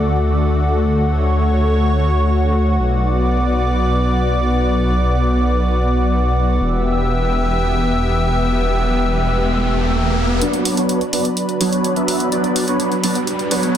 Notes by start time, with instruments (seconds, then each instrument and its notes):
Already playing: detuned saw bass D2, analog synth pad A3 F#4 D5
0.89 analog synth pad C#5
2.80 detuned saw bass B1, analog synth pad B3 D5
6.60 detuned saw bass E1, analog synth pad B3 G4 E5, riser
10.42 analog synth pad F#3 D4 B4, supersaw synth F#3 B3 D4 B4 D5, closed hi-hat, riser
10.53 closed hi-hat
10.65 open hi-hat
10.77 supersaw synth F#3 B3 D4 B4 C#5, closed hi-hat
10.89 closed hi-hat
11.01 closed hi-hat
11.13 supersaw synth F#3 B3 D4 B4 D5, open hi-hat
11.25 closed hi-hat
11.37 closed hi-hat
11.49 closed hi-hat
11.61 supersaw synth F#3 B3 D4 B4 C#5, open hi-hat
11.73 closed hi-hat
11.84 closed hi-hat
11.96 supersaw synth F#3 B3 D4 B4 E5, closed hi-hat
12.08 open hi-hat
12.20 closed hi-hat
12.32 supersaw synth F#3 B3 D4 B4 D5, closed hi-hat
12.44 closed hi-hat
12.56 open hi-hat
12.68 supersaw synth F#3 B3 D4 B4 C#5, closed hi-hat
12.80 closed hi-hat
12.92 closed hi-hat
13.03 supersaw synth F#3 B3 D4 B4 D5, open hi-hat
13.15 closed hi-hat
13.27 closed hi-hat
13.39 closed hi-hat
13.51 supersaw synth F#3 B3 D4 B4 C#5, open hi-hat
13.63 closed hi-hat